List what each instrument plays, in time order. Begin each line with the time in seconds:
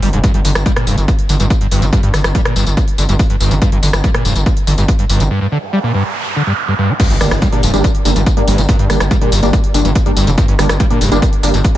0.02 analog synth bass G1, acid bass G3, open hi-hat
0.13 analog synth bass F1, acid bass G2, closed hi-hat
0.24 acid bass G2, kick, closed hi-hat, tambourine
0.34 analog synth bass G1, acid bass G2, closed hi-hat
0.45 analog synth bass G1, acid bass D3, open hi-hat, tambourine
0.55 analog synth bass G1, cross-stick, closed hi-hat, tambourine
0.66 acid bass G3, kick, closed hi-hat, tambourine
0.76 acid bass A#2, cross-stick, closed hi-hat
0.87 analog synth bass F1, acid bass G2, open hi-hat, tambourine
0.98 analog synth bass G1, closed hi-hat, tambourine
1.08 kick, closed hi-hat, tambourine
1.19 closed hi-hat
1.29 analog synth bass G1, acid bass D3, open hi-hat, tambourine
1.40 analog synth bass G1, acid bass G2, closed hi-hat, tambourine
1.50 kick, closed hi-hat, tambourine
1.61 acid bass G2, closed hi-hat
1.71 analog synth bass G1, acid bass G2, open hi-hat, tambourine
1.82 analog synth bass G1, acid bass G3, closed hi-hat, tambourine
1.93 acid bass G2, kick, closed hi-hat, tambourine
2.03 acid bass G2, analog synth bass G2, closed hi-hat
2.14 analog synth bass G1, acid bass D3, cross-stick, open hi-hat, tambourine
2.24 analog synth bass G1, cross-stick, closed hi-hat, tambourine
2.35 acid bass G3, kick, closed hi-hat, tambourine
2.45 acid bass A#2, cross-stick, closed hi-hat
2.56 analog synth bass G1, acid bass G2, open hi-hat, tambourine
2.67 analog synth bass G1, closed hi-hat, tambourine
2.77 kick, closed hi-hat, tambourine
2.88 closed hi-hat
2.98 analog synth bass G1, acid bass D3, open hi-hat, tambourine
3.09 analog synth bass G1, acid bass G2, closed hi-hat, tambourine
3.19 kick, closed hi-hat, tambourine
3.30 acid bass G2, closed hi-hat
3.40 analog synth bass G1, acid bass G2, open hi-hat, tambourine
3.51 analog synth bass G1, acid bass G3, closed hi-hat, tambourine
3.62 acid bass G2, kick, closed hi-hat, tambourine
3.72 analog synth bass G1, acid bass G2, closed hi-hat
3.83 analog synth bass G1, acid bass D3, open hi-hat, tambourine
3.93 analog synth bass G1, cross-stick, closed hi-hat, tambourine
4.04 acid bass G3, kick, closed hi-hat, tambourine
4.14 acid bass A#2, cross-stick, closed hi-hat
4.25 analog synth bass F1, acid bass G2, open hi-hat, tambourine
4.36 analog synth bass G1, closed hi-hat, tambourine
4.46 kick, closed hi-hat, tambourine
4.57 closed hi-hat
4.67 analog synth bass G1, acid bass D3, open hi-hat, tambourine
4.78 analog synth bass G1, acid bass G2, closed hi-hat, tambourine
4.88 kick, closed hi-hat, tambourine
4.99 acid bass G2, closed hi-hat
5.10 analog synth bass G1, acid bass G2, open hi-hat, tambourine
5.20 analog synth bass G1, acid bass G3, closed hi-hat, tambourine
5.31 acid bass G2, noise sweep
5.41 acid bass G2
5.52 acid bass D3
5.73 acid bass G3
5.83 acid bass A#2
5.94 acid bass G2
6.36 acid bass D3
6.47 acid bass G2
6.68 acid bass G2
6.79 acid bass G2
6.89 acid bass G3
7.00 acid bass G2, kick, closed hi-hat, crash, tambourine, impact
7.10 analog synth bass G1, acid bass G2, closed hi-hat
7.21 analog synth bass G1, acid bass D3, synth stab G3 A#3 D4, cross-stick, open hi-hat, tambourine
7.31 analog synth bass G1, cross-stick, closed hi-hat, tambourine
7.42 acid bass G3, kick, closed hi-hat, tambourine
7.52 acid bass A#2, synth stab G3 A#3 D4, closed hi-hat
7.63 analog synth bass F1, acid bass G2, open hi-hat, tambourine
7.74 analog synth bass G1, synth stab G3 A#3 D4, closed hi-hat, tambourine
7.84 kick, closed hi-hat, tambourine
7.95 closed hi-hat
8.05 analog synth bass G1, acid bass D3, synth stab G3 A#3 D4, open hi-hat, tambourine
8.16 analog synth bass G1, acid bass G2, closed hi-hat, tambourine
8.26 kick, closed hi-hat, tambourine
8.37 acid bass G2, synth stab G3 A#3 D4, closed hi-hat
8.48 analog synth bass G1, acid bass G2, open hi-hat, tambourine
8.58 analog synth bass G1, acid bass G3, closed hi-hat, tambourine
8.69 acid bass G2, kick, closed hi-hat, tambourine
8.79 analog synth bass G2, acid bass G2, closed hi-hat
8.90 analog synth bass G1, acid bass D3, synth stab G3 A#3 D4, cross-stick, open hi-hat, tambourine
9.00 analog synth bass G1, cross-stick, closed hi-hat, tambourine
9.11 acid bass G3, kick, closed hi-hat, tambourine
9.22 acid bass A#2, synth stab G3 A#3 D4, closed hi-hat
9.32 analog synth bass G1, acid bass G2, open hi-hat, tambourine
9.43 analog synth bass G1, synth stab G3 A#3 D4, closed hi-hat, tambourine
9.53 kick, closed hi-hat, tambourine
9.64 closed hi-hat
9.74 analog synth bass G1, acid bass D3, synth stab G3 A#3 D4, open hi-hat, tambourine
9.85 analog synth bass G1, acid bass G2, closed hi-hat, tambourine
9.95 kick, closed hi-hat, tambourine
10.06 acid bass G2, synth stab G3 A#3 D4, closed hi-hat
10.17 analog synth bass G1, acid bass G2, open hi-hat, tambourine
10.27 analog synth bass F1, acid bass G3, closed hi-hat, tambourine
10.38 acid bass G2, kick, closed hi-hat, tambourine
10.48 analog synth bass G1, acid bass G2, closed hi-hat
10.59 analog synth bass G1, acid bass D3, synth stab G3 A#3 D4, cross-stick, open hi-hat, tambourine
10.69 analog synth bass G1, cross-stick, closed hi-hat, tambourine
10.80 acid bass G3, kick, closed hi-hat, tambourine
10.90 acid bass A#2, synth stab G3 A#3 D4, closed hi-hat
11.01 analog synth bass F1, acid bass G2, open hi-hat, tambourine
11.12 analog synth bass G1, synth stab G3 A#3 D4, closed hi-hat, tambourine
11.22 kick, closed hi-hat, tambourine
11.33 closed hi-hat
11.43 analog synth bass G1, acid bass D3, synth stab G3 A#3 D4, open hi-hat, tambourine
11.54 analog synth bass G1, acid bass G2, closed hi-hat, tambourine
11.64 kick, closed hi-hat, tambourine